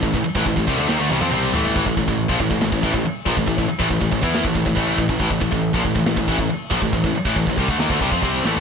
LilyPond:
<<
  \new Staff \with { instrumentName = "Distorted electric guitar" } { \clef bass \time 4/4 \key a \phrygian \tempo 4 = 139 <a, e>16 <a, e>16 r16 <a, e>16 <a, e>16 <a, e>16 <c g>16 <d a>16 <dis bes>16 <d a>16 <c g>16 <f c'>16 <c g c'>8 <a, e a>8 | <a, e>16 <a, e>16 <a, e>16 <a, e>8 <bes, f>16 <a, e>16 <a, e>16 <a, e>16 <a, e>16 <a, e>16 <a, e>16 r8 <bes, f>16 <a, e>16 | <a, e>16 <a, e>16 r16 <a, e>16 <a, e>16 <a, e>16 <a, e>16 <e b e'>8 <a, e>16 <a, e>16 <a, e>16 <a, e a>8 <a, e>16 <a, e>16 | <a, e>16 <a, e>16 <a, e>16 <a, e>8 <bes, f>16 <a, e>16 <a, e>16 <a, e>16 <a, e>16 <a, e>16 <a, e>16 r8 <bes, f>16 <a, e>16 |
<a, e>16 <a, e>16 r16 <a, e>16 <a, e>16 <a, e>16 <c g>16 <d a>16 <dis bes>16 <d a>16 <c g>16 <f c'>16 <c g c'>8 <a, e a>8 | }
  \new Staff \with { instrumentName = "Distorted electric guitar" } { \clef bass \time 4/4 \key a \phrygian <a, e>16 <a, e>16 r16 <a, e>16 <a, e>16 <a, e>16 <c g>16 <d a>16 <dis bes>16 <d a>16 <c g>16 <f c'>16 <c g c'>8 <a, e a>8 | <a, e>16 <a, e>16 <a, e>16 <a, e>8 <bes, f>16 <a, e>16 <a, e>16 <a, e>16 <a, e>16 <a, e>16 <a, e>16 r8 <bes, f>16 <a, e>16 | <a, e>16 <a, e>16 r16 <a, e>16 <a, e>16 <a, e>16 <a, e>16 <e b e'>8 <a, e>16 <a, e>16 <a, e>16 <a, e a>8 <a, e>16 <a, e>16 | <a, e>16 <a, e>16 <a, e>16 <a, e>8 <bes, f>16 <a, e>16 <a, e>16 <a, e>16 <a, e>16 <a, e>16 <a, e>16 r8 <bes, f>16 <a, e>16 |
<a, e>16 <a, e>16 r16 <a, e>16 <a, e>16 <a, e>16 <c g>16 <d a>16 <dis bes>16 <d a>16 <c g>16 <f c'>16 <c g c'>8 <a, e a>8 | }
  \new Staff \with { instrumentName = "Picked electric bass" } { \clef bass \time 4/4 \key a \phrygian a,,16 a,,16 r16 a,,16 a,,16 a,,16 c,16 d,16 dis,16 d,16 c,16 f,16 c,8 a,,8 | a,,16 a,,16 a,,16 a,,8 bes,,16 a,,16 a,,16 a,,16 a,,16 a,,16 a,,16 r8 bes,,16 a,,16 | a,,16 a,,16 r16 a,,16 a,,16 a,,16 a,,16 e,8 a,,16 a,,16 a,,16 a,,8 a,,16 a,,16 | a,,16 a,,16 a,,16 a,,8 bes,,16 a,,16 a,,16 a,,16 a,,16 a,,16 a,,16 r8 bes,,16 a,,16 |
a,,16 a,,16 r16 a,,16 a,,16 a,,16 c,16 d,16 dis,16 d,16 c,16 f,16 c,8 a,,8 | }
  \new DrumStaff \with { instrumentName = "Drums" } \drummode { \time 4/4 <cymc bd>16 bd8 bd16 <cymc bd>16 bd16 bd8 sn8 tommh16 tommh16 toml8 tomfh16 tomfh16 | <cymc bd>16 bd16 bd16 bd16 cymc16 bd16 bd16 bd16 <cymc sn>16 bd16 bd16 bd16 cymc8 bd16 bd16 | <cymc bd>16 bd8 bd16 <cymc bd>16 bd16 bd16 bd16 <cymc sn>16 bd16 bd16 bd16 <cymc bd>8 bd16 bd16 | <cymc bd>16 bd16 bd16 bd16 cymc16 bd16 bd16 bd16 <cymc sn>16 bd16 bd16 bd16 cymc8 bd16 bd16 |
<cymc bd>16 bd8 bd16 <cymc bd>16 bd16 bd16 bd16 <cymc sn>16 bd16 bd16 bd16 <cymc bd>8 sn16 tomfh16 | }
>>